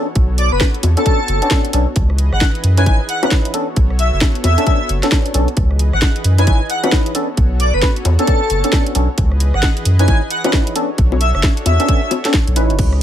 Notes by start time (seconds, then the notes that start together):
Already playing: B3 F#4 A4 C#5
0.15 B1, kick, closed hi-hat
0.38 D5, open hi-hat
0.52 F#1 B4
0.61 kick, snare
0.74 closed hi-hat
0.83 E2, open hi-hat, high bongo
0.97 B3 C#4 D4 A4, closed hi-hat
1.06 B3 C#4 D4 A4, kick, closed hi-hat
1.28 F#1, open hi-hat
1.42 B3 C#4 D4 A4, closed hi-hat
1.51 kick, snare
1.65 closed hi-hat
1.73 B1 B3 C#4 D4 A4, open hi-hat
1.96 C#2 E3 G#4 B4 D#5, kick, closed hi-hat
2.10 cross-stick
2.18 open hi-hat
2.33 G#1 F#5, cross-stick
2.41 kick, snare
2.55 closed hi-hat
2.64 F#2, open hi-hat
2.77 C#4 D#4 E4 B4 G#5, closed hi-hat
2.86 G#1 C#4 D#4 E4 B4 G#5, kick, closed hi-hat
3.09 F#5, open hi-hat
3.23 C#4 D#4 E4 B4 F#5, cross-stick, closed hi-hat, high bongo
3.31 kick, snare
3.45 closed hi-hat
3.54 B3 C#4 D4 F#4 A4 C#5, open hi-hat
3.76 B1, kick, closed hi-hat
3.90 cross-stick
3.99 E5, open hi-hat
4.13 F#1 E5
4.21 kick, snare
4.35 closed hi-hat
4.44 E2 E5, open hi-hat, high bongo
4.58 B3 C#4 D4 A4, closed hi-hat
4.67 B3 C#4 D4 A4, kick, closed hi-hat
4.89 F#1, open hi-hat
5.03 B3 C#4 D4 A4, snare, closed hi-hat
5.12 kick, snare
5.26 closed hi-hat
5.34 B1 B3 C#4 D4 A4, open hi-hat
5.48 closed hi-hat
5.57 C#2 E3 G#4 B4 D#5, kick, closed hi-hat
5.71 cross-stick
5.79 open hi-hat
5.93 G#1 F#5, cross-stick
6.02 kick, snare
6.16 closed hi-hat
6.24 F#2, open hi-hat
6.38 C#4 D#4 E4 B4 G#5, closed hi-hat
6.47 G#1 C#4 D#4 E4 B4 G#5, kick, closed hi-hat
6.70 F#5, open hi-hat
6.84 C#4 D#4 E4 B4 F#5, cross-stick, closed hi-hat, high bongo
6.92 kick, snare
7.06 closed hi-hat
7.15 B3 C#4 D4 F#4 A4 C#5, open hi-hat
7.37 B1, kick, closed hi-hat
7.60 D5, open hi-hat
7.74 F#1 B4
7.82 kick, snare
7.96 closed hi-hat
8.05 E2, open hi-hat, high bongo
8.19 B3 C#4 D4 A4, closed hi-hat
8.27 B3 C#4 D4 A4, kick, closed hi-hat
8.50 F#1, open hi-hat
8.64 B3 C#4 D4 A4, closed hi-hat
8.73 kick, snare
8.87 closed hi-hat
8.95 B1 B3 C#4 D4 A4, open hi-hat
9.18 C#2 E3 G#4 B4 D#5, kick, closed hi-hat
9.32 cross-stick
9.40 open hi-hat
9.54 G#1 F#5, cross-stick
9.63 kick, snare
9.77 closed hi-hat
9.85 F#2, open hi-hat
9.99 C#4 D#4 E4 B4 G#5, closed hi-hat
10.08 G#1 C#4 D#4 E4 B4 G#5, kick, closed hi-hat
10.30 F#5, open hi-hat
10.44 C#4 D#4 E4 B4 F#5, cross-stick, closed hi-hat, high bongo
10.53 kick, snare
10.67 closed hi-hat
10.76 B3 C#4 D4 F#4 A4 C#5, open hi-hat
10.98 B1, kick, closed hi-hat
11.12 cross-stick, high bongo
11.21 E5, open hi-hat
11.35 F#1 E5, cross-stick
11.43 kick, snare
11.57 closed hi-hat
11.66 E2 E5, open hi-hat, high bongo
11.80 B3 C#4 D4 A4, closed hi-hat
11.88 B3 C#4 D4 A4, kick, closed hi-hat
12.11 open hi-hat, high bongo
12.25 B3 C#4 D4 A4, snare, closed hi-hat
12.34 kick, snare
12.47 B1, closed hi-hat
12.56 A1 C#4 D#4 E4 B4, open hi-hat
12.70 F#1, closed hi-hat
12.79 C#2 E3 G#4 B4 D#5, kick, closed hi-hat, crash
12.93 cross-stick